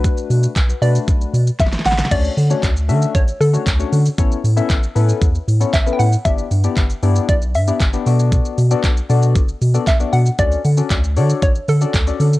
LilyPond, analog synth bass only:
\new Staff \with { instrumentName = "Analog synth bass" } { \clef bass \time 4/4 \key d \major \tempo 4 = 116 b,,8 b,8 b,,8 b,8 b,,8 b,8 g,,8 a,,8 | d,8 d8 d,8 d8 a,,8 d8 d,8 d8 | a,,8 a,8 a,,8 a,8 e,8 a,8 a,,8 a,8 | g,,8 g,8 g,,8 g,8 b,,8 g,8 g,,8 b,8~ |
b,8 b,8 b,,8 b,8 fis,,8 b,8 b,,8 b,8 | d,8 d8 d,8 d8 a,,8 d8 d,8 d8 | }